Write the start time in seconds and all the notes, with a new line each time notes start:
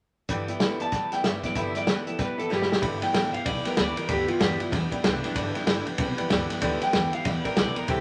0.29 G2 D3 E3 G3 B3 E4 B4 D5 G5, kick, closed hi-hat
0.48 E3 G3 B3 E4 B4 D5 G5, closed hi-hat
0.60 G2 D3 E3 G3 B3 E4 B4 D5 G5, snare, closed hi-hat
0.79 E3 G3 B3 E4 B4 D5 G5 A5, closed hi-hat
0.92 E3 G3 B3 E4 B4 D5 G5, kick, snare, closed hi-hat
1.12 E3 G3 B3 E4 B4 D5 G5, snare, closed hi-hat
1.24 G2 D3 E3 G3 B3 E4 B4 D5 E5 G5, snare, closed hi-hat
1.43 E3 G3 B3 E4 B4 D5 G5, kick, snare, closed hi-hat
1.55 G2 D3 E3 G3 B3 E4 B4 D5 E5 G5, kick, closed hi-hat
1.75 E3 G3 B3 E4 B4 D5 G5, snare, closed hi-hat
1.87 G2 D3 E3 G3 B3 E4 B4 D5 G5, snare, closed hi-hat
2.07 E3 G3 B3 E4 A4 B4 D5 G5, closed hi-hat
2.18 E3 G3 B3 E4 B4 D5 G5, kick, snare, closed hi-hat
2.38 E3 G3 B3 E4 A4 B4 D5 G5, closed hi-hat
2.49 G2 D3 E3 G3 B3 E4 G4 B4 D5 G5, snare
2.62 snare
2.70 E3 G3 B3 E4 B4 D5 G5, snare
2.81 G1 G2 D3 E3 G3 B3 E4 B4 D5 G5, kick, ride
3.02 E3 G3 B3 E4 B4 D5 G5, muted upright bass stroke, snare, ride
3.13 G1 G2 D3 E3 G3 B3 E4 B4 D5 G5, snare, ride
3.33 E3 G3 B3 E4 B4 D5 F5 G5, muted upright bass stroke, ride
3.45 B1 E3 G3 B3 E4 B4 D5 G5, kick, ride
3.64 E3 G3 B3 E4 A#4 B4 D5 G5, muted upright bass stroke, snare, ride
3.77 D2 G2 D3 E3 G3 B3 E4 B4 D5 G5, snare, ride
3.96 E3 G3 B3 E4 A#4 B4 D5 G5, muted upright bass stroke, ride
4.08 D2 G2 D3 E3 G3 B3 E4 G4 B4 D5 G5, kick, ride
4.27 E3 G3 B3 E4 F4 B4 D5 G5, muted upright bass stroke, ride
4.39 E2 G2 D3 E3 G3 B3 E4 G4 B4 D5 G5, snare, ride
4.60 E3 G3 B3 E4 F4 B4 D5 G5, muted upright bass stroke, ride
4.72 E2 E3 G3 B3 D4 E4 B4 D5 G5, kick, snare, ride
4.91 E3 G3 B3 E4 B4 D5 G5, kick, ride
5.04 C2 G2 D3 E3 G3 B3 D4 E4 B4 D5 G5, snare, ride
5.23 E3 G3 B3 D4 E4 B4 D5 G5, snare, ride
5.35 G1 G2 D3 E3 G3 B3 E4 B4 D5 G5, kick, ride
5.54 E3 G3 B3 E4 B4 D5 G5, muted upright bass stroke, snare, ride
5.67 G1 G2 D3 E3 G3 B3 E4 B4 D5 G5, snare, ride
5.86 E3 G3 B3 E4 B4 D5 G5, muted upright bass stroke, ride
5.97 B1 E3 G3 B3 E4 B4 D5 G5, kick, ride
6.17 E3 G3 B3 E4 B4 D5 G5, muted upright bass stroke, ride
6.29 D2 G2 D3 E3 G3 B3 E4 B4 D5 G5, snare, ride
6.49 E3 G3 B3 E4 B4 D5 G5, muted upright bass stroke, snare, ride
6.60 D2 G2 D3 E3 G3 B3 E4 B4 D5 G5, kick, ride
6.80 E3 G3 B3 E4 B4 D5 G5, muted upright bass stroke, snare, ride
6.92 E2 G2 D3 E3 G3 B3 E4 B4 D5 G5, snare, ride
7.12 E3 G3 B3 E4 B4 D5 F5 G5, ride
7.25 E2 E3 G3 B3 E4 B4 D5 G5, kick, snare, ride
7.44 E3 G3 B3 E4 A#4 B4 D5 G5, kick, ride
7.56 B1 G2 D3 E3 G3 B3 E4 B4 D5 G5, snare, ride
7.75 E3 G3 B3 E4 A#4 B4 G5, muted upright bass stroke, ride
7.87 C2 C3 E3 A3 E4 G4 C5 E5 G5, kick, ride